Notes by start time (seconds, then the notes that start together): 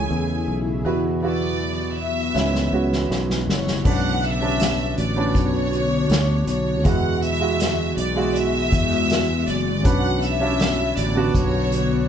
Already playing: C#3 E3 G#3 A3 C#4 E4 G#4 G#5
0.11 E2
0.48 B1
0.85 E2 B2 E3 F#3 B3 E4 F#4 B4
1.22 B3 E4 F#4 D5
1.99 E5
2.34 C#2 G#2 C#3 G#3 B3 C#4 E4, snare
2.55 snare
2.72 C#2 B3 C#4 F#4
2.93 snare
3.10 B1, snare
3.30 snare
3.48 F#1 C#5, snare
3.68 snare
3.84 B1 D3 B3 C#4 D4 F#4 F#5, kick, crash
4.22 E5, closed hi-hat
4.40 B3 C#4 D4
4.60 snare, closed hi-hat
4.98 A1 D5, closed hi-hat
5.16 B3 C#4 D4
5.35 B1 C#5, kick, closed hi-hat
5.73 closed hi-hat
6.10 D2, snare, closed hi-hat
6.47 B1 C#5, closed hi-hat
6.84 E2 B2 E3 G#3 E4 F#4 F#5, kick, closed hi-hat
7.22 E5, closed hi-hat
7.40 G#3 E4 F#4
7.60 snare, closed hi-hat
7.97 B1 D5, closed hi-hat
8.16 G#3 E4 F#4
8.35 E5, closed hi-hat
8.72 E2, kick, closed hi-hat
9.10 snare, closed hi-hat
9.47 F#1 D5, closed hi-hat
9.84 B1 D3 C#4 D4 B4 F#5, kick, closed hi-hat
10.22 E5, closed hi-hat
10.40 C#4 D4 E4
10.59 snare, closed hi-hat
10.97 A1 D5, closed hi-hat
11.15 B3 D4 F#4
11.34 B1 C#5, kick, closed hi-hat
11.72 closed hi-hat